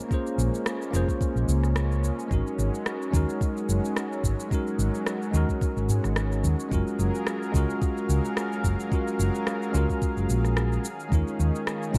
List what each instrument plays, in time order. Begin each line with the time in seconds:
Already playing: analog synth pad G#3 A#3 C#4, tine electric piano A#3 C#4 F4 G#4 C5
0.08 tine electric piano A#3 C#4 F4, kick, shaker
0.13 tine electric piano G#4 C5
0.27 shaker
0.38 fingered electric bass A#1, shaker
0.54 shaker
0.66 cross-stick, shaker
0.82 shaker
0.91 fingered electric bass F1, tine electric piano A#3 C#4 F4, shaker
0.95 tine electric piano G#4 C5
1.08 kick, shaker
1.21 kick, shaker
1.36 fingered electric bass A#1, shaker
1.48 fingered electric bass C#2, shaker
1.63 cross-stick, shaker
1.76 cross-stick, shaker
1.92 shaker
2.04 shaker
2.19 shaker
2.28 fingered electric bass G#1, analog synth pad F#3, tine electric piano G#3 C#4 D#4, kick, shaker
2.32 tine electric piano F#4 A#4
2.47 shaker
2.58 fingered electric bass G#1, shaker
2.74 shaker
2.86 cross-stick, shaker
3.02 shaker
3.11 fingered electric bass D#2, tine electric piano G#3 C#4 D#4, kick, shaker
3.15 tine electric piano F#4 A#4
3.29 shaker
3.41 kick, shaker
3.57 shaker
3.69 fingered electric bass F#1, shaker
3.85 shaker
3.97 cross-stick, shaker
4.13 shaker
4.24 fingered electric bass G#1, kick, shaker
4.40 shaker
4.49 tine electric piano G#3 C#4 D#4, kick, shaker
4.53 tine electric piano F#4 A#4
4.67 shaker
4.79 fingered electric bass G#1, shaker
4.95 shaker
5.07 cross-stick, shaker
5.22 shaker
5.31 fingered electric bass D#2, tine electric piano G#3 C#4 D#4, shaker
5.35 tine electric piano F#4 A#4
5.49 kick, shaker
5.61 kick, shaker
5.77 fingered electric bass G#1, shaker
5.89 fingered electric bass G#2, shaker
6.04 fingered electric bass G#1, cross-stick, shaker
6.16 cross-stick, shaker
6.32 shaker
6.44 fingered electric bass D#2, shaker
6.60 shaker
6.69 fingered electric bass F#1, analog synth pad F#3 G#4 A#4 F5, tine electric piano G#3 C#4 F4, kick, shaker
6.73 tine electric piano F#4 A#4
6.87 shaker
6.99 fingered electric bass F#1, shaker
7.15 shaker
7.27 cross-stick, shaker
7.43 shaker
7.52 fingered electric bass C#2, tine electric piano G#3 C#4 F4, kick, shaker
7.56 tine electric piano F#4 A#4
7.70 shaker
7.82 kick, shaker
7.97 shaker
8.09 fingered electric bass C#2, shaker
8.25 shaker
8.37 cross-stick, shaker
8.53 shaker
8.64 fingered electric bass F#1, kick, shaker
8.80 shaker
8.89 tine electric piano G#3 C#4 F4, kick, shaker
8.94 tine electric piano F#4 A#4
9.08 shaker
9.19 fingered electric bass F#1, shaker
9.35 shaker
9.47 cross-stick, shaker
9.63 shaker
9.71 fingered electric bass C#2, tine electric piano G#3 C#4 F4, shaker
9.76 tine electric piano F#4 A#4
9.89 kick, shaker
10.02 kick, shaker
10.17 fingered electric bass F#1, shaker
10.29 fingered electric bass A#1, shaker
10.45 cross-stick, shaker
10.57 cross-stick, shaker
10.73 shaker
10.85 analog synth pad D#3 C#4, shaker
11.00 shaker
11.09 fingered electric bass D#2, tine electric piano G#3 C#4 D#4, kick, shaker
11.13 tine electric piano F4 A#4
11.28 shaker
11.40 fingered electric bass D#2, shaker
11.55 shaker
11.67 cross-stick, shaker
11.83 shaker
11.91 fingered electric bass A#1, tine electric piano G#3 C#4 D#4, kick, shaker